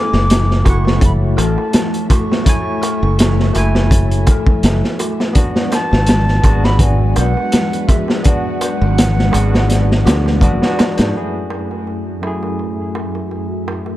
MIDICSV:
0, 0, Header, 1, 8, 480
1, 0, Start_track
1, 0, Key_signature, 3, "minor"
1, 0, Tempo, 722892
1, 1635, Time_signature, 4, 2, 24, 8
1, 9275, End_track
2, 0, Start_track
2, 0, Title_t, "Flute"
2, 0, Program_c, 0, 73
2, 0, Note_on_c, 0, 86, 127
2, 446, Note_on_c, 0, 85, 103
2, 456, Note_off_c, 0, 86, 0
2, 680, Note_off_c, 0, 85, 0
2, 695, Note_on_c, 0, 83, 98
2, 747, Note_off_c, 0, 83, 0
2, 931, Note_on_c, 0, 81, 97
2, 1377, Note_off_c, 0, 81, 0
2, 1412, Note_on_c, 0, 85, 102
2, 2817, Note_off_c, 0, 85, 0
2, 3813, Note_on_c, 0, 81, 125
2, 4412, Note_on_c, 0, 83, 117
2, 4422, Note_off_c, 0, 81, 0
2, 4531, Note_on_c, 0, 80, 105
2, 4541, Note_off_c, 0, 83, 0
2, 4758, Note_off_c, 0, 80, 0
2, 4762, Note_on_c, 0, 78, 118
2, 5230, Note_on_c, 0, 76, 95
2, 5240, Note_off_c, 0, 78, 0
2, 5482, Note_on_c, 0, 80, 100
2, 5492, Note_off_c, 0, 76, 0
2, 5507, Note_on_c, 0, 78, 109
2, 5513, Note_off_c, 0, 80, 0
2, 6919, Note_off_c, 0, 78, 0
2, 9275, End_track
3, 0, Start_track
3, 0, Title_t, "Synth bell"
3, 0, Program_c, 1, 98
3, 0, Control_c, 1, 64, 127
3, 0, Note_on_c, 1, 61, 82
3, 0, Note_on_c, 1, 69, 94
3, 420, Note_off_c, 1, 69, 0
3, 429, Note_on_c, 1, 66, 77
3, 557, Note_off_c, 1, 66, 0
3, 668, Note_on_c, 1, 73, 78
3, 901, Note_off_c, 1, 73, 0
3, 909, Note_on_c, 1, 69, 108
3, 1381, Note_off_c, 1, 69, 0
3, 1392, Note_on_c, 1, 66, 82
3, 1518, Note_off_c, 1, 66, 0
3, 1629, Note_on_c, 1, 73, 80
3, 1861, Note_off_c, 1, 73, 0
3, 1869, Note_on_c, 1, 69, 99
3, 2342, Note_off_c, 1, 69, 0
3, 2349, Note_on_c, 1, 66, 73
3, 2477, Note_off_c, 1, 66, 0
3, 2593, Note_on_c, 1, 73, 78
3, 2823, Note_off_c, 1, 73, 0
3, 2835, Note_on_c, 1, 69, 103
3, 3304, Note_off_c, 1, 69, 0
3, 3314, Note_on_c, 1, 66, 79
3, 3439, Note_off_c, 1, 66, 0
3, 3552, Note_on_c, 1, 74, 87
3, 3564, Control_c, 1, 64, 0
3, 3568, Note_off_c, 1, 61, 0
3, 3683, Control_c, 1, 64, 127
3, 3783, Note_off_c, 1, 74, 0
3, 3794, Note_on_c, 1, 71, 93
3, 4264, Note_off_c, 1, 71, 0
3, 4272, Note_on_c, 1, 68, 80
3, 4398, Note_off_c, 1, 68, 0
3, 4513, Note_on_c, 1, 74, 82
3, 4743, Note_off_c, 1, 74, 0
3, 4754, Note_on_c, 1, 71, 106
3, 5224, Note_off_c, 1, 71, 0
3, 5236, Note_on_c, 1, 68, 78
3, 5360, Note_off_c, 1, 68, 0
3, 5473, Note_on_c, 1, 74, 83
3, 5703, Note_off_c, 1, 74, 0
3, 5718, Note_on_c, 1, 71, 99
3, 6186, Note_off_c, 1, 71, 0
3, 6194, Note_on_c, 1, 68, 83
3, 6319, Note_off_c, 1, 68, 0
3, 6433, Note_on_c, 1, 74, 76
3, 6552, Note_off_c, 1, 74, 0
3, 6675, Note_on_c, 1, 66, 109
3, 6793, Note_off_c, 1, 66, 0
3, 7152, Note_on_c, 1, 74, 80
3, 7278, Note_off_c, 1, 74, 0
3, 7286, Note_on_c, 1, 71, 102
3, 7390, Note_off_c, 1, 71, 0
3, 7405, Control_c, 1, 64, 0
3, 7537, Control_c, 1, 64, 127
3, 9275, End_track
4, 0, Start_track
4, 0, Title_t, "String machine"
4, 0, Program_c, 2, 50
4, 0, Note_on_c, 2, 57, 91
4, 0, Note_on_c, 2, 66, 84
4, 0, Note_on_c, 2, 76, 102
4, 3521, Note_off_c, 2, 76, 0
4, 3523, Note_off_c, 2, 57, 0
4, 3523, Note_off_c, 2, 66, 0
4, 3560, Note_on_c, 2, 66, 82
4, 3560, Note_on_c, 2, 71, 104
4, 3562, Note_on_c, 2, 56, 90
4, 7371, Note_off_c, 2, 66, 0
4, 7371, Note_off_c, 2, 71, 0
4, 7372, Note_off_c, 2, 56, 0
4, 7400, Note_on_c, 2, 57, 80
4, 7401, Note_on_c, 2, 66, 75
4, 7401, Note_on_c, 2, 76, 93
4, 9275, Note_off_c, 2, 57, 0
4, 9275, Note_off_c, 2, 66, 0
4, 9275, Note_off_c, 2, 76, 0
4, 9275, End_track
5, 0, Start_track
5, 0, Title_t, "Tine electric piano"
5, 0, Program_c, 3, 4
5, 0, Control_c, 3, 64, 127
5, 0, Note_on_c, 3, 57, 86
5, 0, Note_on_c, 3, 64, 87
5, 0, Note_on_c, 3, 80, 96
5, 402, Note_off_c, 3, 57, 0
5, 410, Note_off_c, 3, 64, 0
5, 417, Note_off_c, 3, 80, 0
5, 430, Note_on_c, 3, 57, 82
5, 446, Note_on_c, 3, 64, 77
5, 461, Note_on_c, 3, 78, 93
5, 1606, Note_off_c, 3, 57, 0
5, 1614, Note_off_c, 3, 64, 0
5, 1622, Note_off_c, 3, 78, 0
5, 1624, Note_on_c, 3, 57, 89
5, 1640, Note_on_c, 3, 64, 82
5, 1655, Note_on_c, 3, 80, 96
5, 2323, Note_off_c, 3, 57, 0
5, 2332, Note_off_c, 3, 64, 0
5, 2339, Note_off_c, 3, 80, 0
5, 2344, Note_on_c, 3, 57, 87
5, 2361, Note_on_c, 3, 64, 84
5, 2376, Note_on_c, 3, 80, 100
5, 3524, Note_off_c, 3, 57, 0
5, 3532, Note_off_c, 3, 64, 0
5, 3539, Note_on_c, 3, 59, 96
5, 3540, Note_off_c, 3, 80, 0
5, 3554, Note_on_c, 3, 62, 79
5, 3564, Control_c, 3, 64, 0
5, 3570, Note_on_c, 3, 66, 99
5, 3693, Control_c, 3, 64, 127
5, 4241, Note_off_c, 3, 59, 0
5, 4249, Note_off_c, 3, 62, 0
5, 4257, Note_off_c, 3, 66, 0
5, 4262, Note_on_c, 3, 59, 87
5, 4276, Note_on_c, 3, 62, 81
5, 4293, Note_on_c, 3, 66, 99
5, 5442, Note_off_c, 3, 59, 0
5, 5450, Note_off_c, 3, 62, 0
5, 5458, Note_off_c, 3, 66, 0
5, 5463, Note_on_c, 3, 59, 92
5, 5481, Note_on_c, 3, 62, 81
5, 5494, Note_on_c, 3, 66, 93
5, 6163, Note_off_c, 3, 59, 0
5, 6172, Note_off_c, 3, 62, 0
5, 6179, Note_off_c, 3, 66, 0
5, 6183, Note_on_c, 3, 59, 92
5, 6199, Note_on_c, 3, 62, 83
5, 6216, Note_on_c, 3, 66, 90
5, 6888, Note_off_c, 3, 59, 0
5, 6895, Note_off_c, 3, 62, 0
5, 6904, Note_off_c, 3, 66, 0
5, 6911, Note_on_c, 3, 59, 84
5, 6919, Note_on_c, 3, 62, 78
5, 6929, Note_on_c, 3, 66, 88
5, 7013, Note_off_c, 3, 59, 0
5, 7017, Note_off_c, 3, 62, 0
5, 7022, Note_off_c, 3, 66, 0
5, 7048, Note_on_c, 3, 59, 81
5, 7056, Note_on_c, 3, 62, 71
5, 7061, Note_on_c, 3, 66, 89
5, 7370, Note_off_c, 3, 59, 0
5, 7374, Note_off_c, 3, 62, 0
5, 7377, Note_off_c, 3, 66, 0
5, 7385, Note_on_c, 3, 42, 76
5, 7398, Note_on_c, 3, 57, 66
5, 7403, Control_c, 3, 64, 0
5, 7408, Note_on_c, 3, 64, 65
5, 7417, Note_on_c, 3, 68, 84
5, 7533, Control_c, 3, 64, 127
5, 8084, Note_off_c, 3, 42, 0
5, 8091, Note_off_c, 3, 57, 0
5, 8096, Note_off_c, 3, 64, 0
5, 8100, Note_off_c, 3, 68, 0
5, 8111, Note_on_c, 3, 42, 68
5, 8121, Note_on_c, 3, 57, 66
5, 8133, Note_on_c, 3, 64, 66
5, 8146, Note_on_c, 3, 68, 79
5, 9275, Note_off_c, 3, 42, 0
5, 9275, Note_off_c, 3, 57, 0
5, 9275, Note_off_c, 3, 64, 0
5, 9275, Note_off_c, 3, 68, 0
5, 9275, End_track
6, 0, Start_track
6, 0, Title_t, "Fingered electric bass"
6, 0, Program_c, 4, 33
6, 89, Note_on_c, 4, 30, 94
6, 415, Note_off_c, 4, 30, 0
6, 442, Note_on_c, 4, 30, 81
6, 898, Note_off_c, 4, 30, 0
6, 918, Note_on_c, 4, 33, 100
6, 1032, Note_off_c, 4, 33, 0
6, 2010, Note_on_c, 4, 30, 99
6, 2336, Note_off_c, 4, 30, 0
6, 2361, Note_on_c, 4, 30, 85
6, 2817, Note_off_c, 4, 30, 0
6, 3078, Note_on_c, 4, 30, 102
6, 3192, Note_off_c, 4, 30, 0
6, 3935, Note_on_c, 4, 32, 98
6, 4259, Note_off_c, 4, 32, 0
6, 4277, Note_on_c, 4, 32, 79
6, 4735, Note_off_c, 4, 32, 0
6, 4764, Note_on_c, 4, 35, 108
6, 4875, Note_off_c, 4, 35, 0
6, 5854, Note_on_c, 4, 32, 100
6, 6178, Note_off_c, 4, 32, 0
6, 6204, Note_on_c, 4, 32, 84
6, 6659, Note_off_c, 4, 32, 0
6, 6682, Note_on_c, 4, 38, 103
6, 6918, Note_on_c, 4, 30, 103
6, 6928, Note_off_c, 4, 38, 0
6, 7032, Note_off_c, 4, 30, 0
6, 7297, Note_on_c, 4, 44, 92
6, 7387, Note_off_c, 4, 44, 0
6, 9275, End_track
7, 0, Start_track
7, 0, Title_t, "Darbuka"
7, 89, Note_on_c, 9, 63, 50
7, 155, Note_off_c, 9, 63, 0
7, 198, Note_on_c, 9, 63, 38
7, 264, Note_off_c, 9, 63, 0
7, 434, Note_on_c, 9, 63, 84
7, 501, Note_off_c, 9, 63, 0
7, 564, Note_on_c, 9, 63, 51
7, 631, Note_off_c, 9, 63, 0
7, 680, Note_on_c, 9, 63, 37
7, 747, Note_off_c, 9, 63, 0
7, 916, Note_on_c, 9, 63, 87
7, 983, Note_off_c, 9, 63, 0
7, 1048, Note_on_c, 9, 63, 57
7, 1115, Note_off_c, 9, 63, 0
7, 1159, Note_on_c, 9, 63, 37
7, 1226, Note_off_c, 9, 63, 0
7, 1399, Note_on_c, 9, 63, 94
7, 1465, Note_off_c, 9, 63, 0
7, 1538, Note_on_c, 9, 63, 52
7, 1604, Note_off_c, 9, 63, 0
7, 1642, Note_on_c, 9, 63, 43
7, 1708, Note_off_c, 9, 63, 0
7, 1881, Note_on_c, 9, 63, 83
7, 1947, Note_off_c, 9, 63, 0
7, 2013, Note_on_c, 9, 63, 52
7, 2080, Note_off_c, 9, 63, 0
7, 2119, Note_on_c, 9, 63, 37
7, 2185, Note_off_c, 9, 63, 0
7, 2361, Note_on_c, 9, 63, 77
7, 2427, Note_off_c, 9, 63, 0
7, 2493, Note_on_c, 9, 63, 49
7, 2559, Note_off_c, 9, 63, 0
7, 2603, Note_on_c, 9, 63, 36
7, 2670, Note_off_c, 9, 63, 0
7, 2834, Note_on_c, 9, 63, 88
7, 2901, Note_off_c, 9, 63, 0
7, 2967, Note_on_c, 9, 63, 47
7, 3034, Note_off_c, 9, 63, 0
7, 3079, Note_on_c, 9, 63, 39
7, 3146, Note_off_c, 9, 63, 0
7, 3319, Note_on_c, 9, 63, 82
7, 3386, Note_off_c, 9, 63, 0
7, 3454, Note_on_c, 9, 63, 54
7, 3520, Note_off_c, 9, 63, 0
7, 3564, Note_on_c, 9, 63, 39
7, 3630, Note_off_c, 9, 63, 0
7, 3801, Note_on_c, 9, 63, 92
7, 3868, Note_off_c, 9, 63, 0
7, 3928, Note_on_c, 9, 63, 50
7, 3994, Note_off_c, 9, 63, 0
7, 4036, Note_on_c, 9, 63, 40
7, 4103, Note_off_c, 9, 63, 0
7, 4278, Note_on_c, 9, 63, 88
7, 4344, Note_off_c, 9, 63, 0
7, 4417, Note_on_c, 9, 63, 48
7, 4483, Note_off_c, 9, 63, 0
7, 4520, Note_on_c, 9, 63, 36
7, 4587, Note_off_c, 9, 63, 0
7, 4757, Note_on_c, 9, 63, 99
7, 4823, Note_off_c, 9, 63, 0
7, 4894, Note_on_c, 9, 63, 50
7, 4961, Note_off_c, 9, 63, 0
7, 5002, Note_on_c, 9, 63, 36
7, 5068, Note_off_c, 9, 63, 0
7, 5237, Note_on_c, 9, 63, 91
7, 5304, Note_off_c, 9, 63, 0
7, 5366, Note_on_c, 9, 63, 51
7, 5433, Note_off_c, 9, 63, 0
7, 5481, Note_on_c, 9, 63, 36
7, 5547, Note_off_c, 9, 63, 0
7, 5719, Note_on_c, 9, 63, 90
7, 5786, Note_off_c, 9, 63, 0
7, 5853, Note_on_c, 9, 63, 56
7, 5919, Note_off_c, 9, 63, 0
7, 5968, Note_on_c, 9, 63, 42
7, 6035, Note_off_c, 9, 63, 0
7, 6195, Note_on_c, 9, 63, 97
7, 6261, Note_off_c, 9, 63, 0
7, 6331, Note_on_c, 9, 63, 50
7, 6398, Note_off_c, 9, 63, 0
7, 6446, Note_on_c, 9, 63, 38
7, 6512, Note_off_c, 9, 63, 0
7, 6687, Note_on_c, 9, 63, 91
7, 6753, Note_off_c, 9, 63, 0
7, 6813, Note_on_c, 9, 63, 54
7, 6879, Note_off_c, 9, 63, 0
7, 6925, Note_on_c, 9, 63, 39
7, 6992, Note_off_c, 9, 63, 0
7, 7163, Note_on_c, 9, 63, 90
7, 7229, Note_off_c, 9, 63, 0
7, 7294, Note_on_c, 9, 63, 45
7, 7361, Note_off_c, 9, 63, 0
7, 7405, Note_on_c, 9, 63, 33
7, 7471, Note_off_c, 9, 63, 0
7, 7639, Note_on_c, 9, 63, 76
7, 7705, Note_off_c, 9, 63, 0
7, 7776, Note_on_c, 9, 63, 38
7, 7842, Note_off_c, 9, 63, 0
7, 7884, Note_on_c, 9, 63, 32
7, 7950, Note_off_c, 9, 63, 0
7, 8121, Note_on_c, 9, 63, 73
7, 8187, Note_off_c, 9, 63, 0
7, 8252, Note_on_c, 9, 63, 46
7, 8318, Note_off_c, 9, 63, 0
7, 8362, Note_on_c, 9, 63, 34
7, 8428, Note_off_c, 9, 63, 0
7, 8600, Note_on_c, 9, 63, 72
7, 8666, Note_off_c, 9, 63, 0
7, 8732, Note_on_c, 9, 63, 40
7, 8798, Note_off_c, 9, 63, 0
7, 8840, Note_on_c, 9, 63, 33
7, 8906, Note_off_c, 9, 63, 0
7, 9083, Note_on_c, 9, 63, 80
7, 9149, Note_off_c, 9, 63, 0
7, 9204, Note_on_c, 9, 63, 43
7, 9270, Note_off_c, 9, 63, 0
7, 9275, End_track
8, 0, Start_track
8, 0, Title_t, "Drums"
8, 88, Note_on_c, 9, 38, 48
8, 154, Note_off_c, 9, 38, 0
8, 199, Note_on_c, 9, 42, 94
8, 208, Note_on_c, 9, 38, 127
8, 265, Note_off_c, 9, 42, 0
8, 274, Note_off_c, 9, 38, 0
8, 338, Note_on_c, 9, 38, 41
8, 405, Note_off_c, 9, 38, 0
8, 437, Note_on_c, 9, 36, 88
8, 438, Note_on_c, 9, 42, 64
8, 503, Note_off_c, 9, 36, 0
8, 504, Note_off_c, 9, 42, 0
8, 579, Note_on_c, 9, 38, 54
8, 646, Note_off_c, 9, 38, 0
8, 673, Note_on_c, 9, 36, 119
8, 676, Note_on_c, 9, 42, 79
8, 739, Note_off_c, 9, 36, 0
8, 743, Note_off_c, 9, 42, 0
8, 918, Note_on_c, 9, 42, 70
8, 984, Note_off_c, 9, 42, 0
8, 1151, Note_on_c, 9, 42, 91
8, 1157, Note_on_c, 9, 38, 116
8, 1217, Note_off_c, 9, 42, 0
8, 1223, Note_off_c, 9, 38, 0
8, 1287, Note_on_c, 9, 42, 45
8, 1354, Note_off_c, 9, 42, 0
8, 1395, Note_on_c, 9, 36, 105
8, 1395, Note_on_c, 9, 42, 74
8, 1461, Note_off_c, 9, 36, 0
8, 1461, Note_off_c, 9, 42, 0
8, 1540, Note_on_c, 9, 38, 50
8, 1607, Note_off_c, 9, 38, 0
8, 1634, Note_on_c, 9, 36, 121
8, 1636, Note_on_c, 9, 42, 98
8, 1701, Note_off_c, 9, 36, 0
8, 1702, Note_off_c, 9, 42, 0
8, 1876, Note_on_c, 9, 42, 64
8, 1943, Note_off_c, 9, 42, 0
8, 2117, Note_on_c, 9, 42, 100
8, 2128, Note_on_c, 9, 38, 127
8, 2183, Note_off_c, 9, 42, 0
8, 2194, Note_off_c, 9, 38, 0
8, 2257, Note_on_c, 9, 38, 37
8, 2323, Note_off_c, 9, 38, 0
8, 2355, Note_on_c, 9, 42, 72
8, 2421, Note_off_c, 9, 42, 0
8, 2491, Note_on_c, 9, 38, 61
8, 2557, Note_off_c, 9, 38, 0
8, 2596, Note_on_c, 9, 36, 104
8, 2601, Note_on_c, 9, 42, 97
8, 2662, Note_off_c, 9, 36, 0
8, 2667, Note_off_c, 9, 42, 0
8, 2731, Note_on_c, 9, 42, 48
8, 2798, Note_off_c, 9, 42, 0
8, 2833, Note_on_c, 9, 42, 68
8, 2837, Note_on_c, 9, 36, 100
8, 2899, Note_off_c, 9, 42, 0
8, 2903, Note_off_c, 9, 36, 0
8, 2965, Note_on_c, 9, 36, 92
8, 3031, Note_off_c, 9, 36, 0
8, 3075, Note_on_c, 9, 42, 87
8, 3082, Note_on_c, 9, 38, 108
8, 3141, Note_off_c, 9, 42, 0
8, 3149, Note_off_c, 9, 38, 0
8, 3216, Note_on_c, 9, 38, 40
8, 3282, Note_off_c, 9, 38, 0
8, 3315, Note_on_c, 9, 42, 68
8, 3381, Note_off_c, 9, 42, 0
8, 3454, Note_on_c, 9, 38, 45
8, 3520, Note_off_c, 9, 38, 0
8, 3552, Note_on_c, 9, 42, 86
8, 3556, Note_on_c, 9, 36, 114
8, 3618, Note_off_c, 9, 42, 0
8, 3622, Note_off_c, 9, 36, 0
8, 3690, Note_on_c, 9, 38, 58
8, 3757, Note_off_c, 9, 38, 0
8, 3796, Note_on_c, 9, 42, 61
8, 3799, Note_on_c, 9, 38, 43
8, 3862, Note_off_c, 9, 42, 0
8, 3866, Note_off_c, 9, 38, 0
8, 3938, Note_on_c, 9, 38, 52
8, 4005, Note_off_c, 9, 38, 0
8, 4027, Note_on_c, 9, 42, 92
8, 4044, Note_on_c, 9, 38, 127
8, 4093, Note_off_c, 9, 42, 0
8, 4111, Note_off_c, 9, 38, 0
8, 4173, Note_on_c, 9, 38, 39
8, 4239, Note_off_c, 9, 38, 0
8, 4273, Note_on_c, 9, 36, 89
8, 4274, Note_on_c, 9, 42, 67
8, 4340, Note_off_c, 9, 36, 0
8, 4340, Note_off_c, 9, 42, 0
8, 4410, Note_on_c, 9, 38, 51
8, 4476, Note_off_c, 9, 38, 0
8, 4509, Note_on_c, 9, 36, 109
8, 4511, Note_on_c, 9, 42, 92
8, 4575, Note_off_c, 9, 36, 0
8, 4577, Note_off_c, 9, 42, 0
8, 4753, Note_on_c, 9, 42, 64
8, 4819, Note_off_c, 9, 42, 0
8, 4994, Note_on_c, 9, 42, 87
8, 5003, Note_on_c, 9, 38, 113
8, 5060, Note_off_c, 9, 42, 0
8, 5070, Note_off_c, 9, 38, 0
8, 5134, Note_on_c, 9, 42, 45
8, 5200, Note_off_c, 9, 42, 0
8, 5236, Note_on_c, 9, 36, 92
8, 5238, Note_on_c, 9, 42, 69
8, 5303, Note_off_c, 9, 36, 0
8, 5305, Note_off_c, 9, 42, 0
8, 5376, Note_on_c, 9, 38, 50
8, 5442, Note_off_c, 9, 38, 0
8, 5474, Note_on_c, 9, 42, 99
8, 5481, Note_on_c, 9, 36, 115
8, 5540, Note_off_c, 9, 42, 0
8, 5548, Note_off_c, 9, 36, 0
8, 5717, Note_on_c, 9, 42, 66
8, 5783, Note_off_c, 9, 42, 0
8, 5964, Note_on_c, 9, 42, 104
8, 5967, Note_on_c, 9, 38, 109
8, 6031, Note_off_c, 9, 42, 0
8, 6033, Note_off_c, 9, 38, 0
8, 6103, Note_on_c, 9, 38, 43
8, 6170, Note_off_c, 9, 38, 0
8, 6202, Note_on_c, 9, 42, 69
8, 6268, Note_off_c, 9, 42, 0
8, 6338, Note_on_c, 9, 38, 61
8, 6405, Note_off_c, 9, 38, 0
8, 6438, Note_on_c, 9, 42, 61
8, 6446, Note_on_c, 9, 38, 41
8, 6504, Note_off_c, 9, 42, 0
8, 6512, Note_off_c, 9, 38, 0
8, 6585, Note_on_c, 9, 38, 45
8, 6651, Note_off_c, 9, 38, 0
8, 6685, Note_on_c, 9, 42, 78
8, 6691, Note_on_c, 9, 38, 107
8, 6751, Note_off_c, 9, 42, 0
8, 6758, Note_off_c, 9, 38, 0
8, 6820, Note_on_c, 9, 38, 36
8, 6887, Note_off_c, 9, 38, 0
8, 6914, Note_on_c, 9, 36, 94
8, 6920, Note_on_c, 9, 42, 59
8, 6980, Note_off_c, 9, 36, 0
8, 6987, Note_off_c, 9, 42, 0
8, 7055, Note_on_c, 9, 38, 54
8, 7122, Note_off_c, 9, 38, 0
8, 7165, Note_on_c, 9, 42, 77
8, 7171, Note_on_c, 9, 38, 100
8, 7232, Note_off_c, 9, 42, 0
8, 7238, Note_off_c, 9, 38, 0
8, 7288, Note_on_c, 9, 42, 85
8, 7301, Note_on_c, 9, 38, 93
8, 7355, Note_off_c, 9, 42, 0
8, 7367, Note_off_c, 9, 38, 0
8, 9275, End_track
0, 0, End_of_file